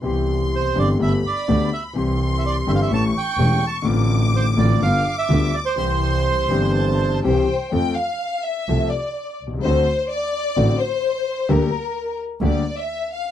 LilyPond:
<<
  \new Staff \with { instrumentName = "Violin section" } { \time 4/4 \key c \major \tempo 4 = 126 c'''2 b''2 | c'''2 cis'''2 | d'''2 d'''2 | c'''2 a''4 <c'' g''>4 |
\key f \major g''8 f''4 e''4 d''4 r8 | c''4 d''4. c''4. | bes'4. r8 d''8. e''8. f''8 | }
  \new Staff \with { instrumentName = "Bandoneon" } { \time 4/4 \key c \major r4 c''8 d''8 e''8 d''4 e''8 | r8. r32 e''32 d''8 e''32 f''32 e''16 a''8 g''4 a''8 | r4 c''8 d''8 f''8. e''8. d''16 c''16~ | c''2. r4 |
\key f \major r1 | r1 | r1 | }
  \new Staff \with { instrumentName = "Grand piano" } { \clef bass \time 4/4 \key c \major <c, c e b c' g'>4. <g,, g, e b c' g'>8 <g,, g, d a b g'>8 r8 <d, d a b g'>8 r8 | <c, c e g c' g'>4. <g,, g, e g c' g'>8 <a,, a, e a cis' g'>8 r8 <e,, e, e a cis' g'>8 r8 | <a,, a, d a c' f'>4. <a,, a, d a c' f'>8 <g,, g, d g b f'>8 r8 <d, d g b f'>8 r8 | <c, c e g c' g'>4. <g,, g, e g c' g'>4. <c, c e g c' g'>8 r8 |
\key f \major <f, f a c' a'>8 r4. <c, c f a c' a'>8 r4 r32 b,,32 c,32 des,32 | <d, d a c' fis'>8 r4. <a,, a, d a c' fis'>8 r4. | <d, d g bes g'>8 r4. <d, d g bes g'>8 r4. | }
  \new Staff \with { instrumentName = "Double bass" } { \clef bass \time 4/4 \key c \major c,4. g,,8 g,,8 r8 d,8 r8 | c,4. g,,8 a,,8 r8 e,,8 r8 | a,,4. a,,8 g,,8 r8 d,8 r8 | c,4. g,,4. c,8 r8 |
\key f \major f,8 r4. c,8 r4 c,8 | d,8 r4. a,,8 r4. | d,8 r4. d,8 r4. | }
>>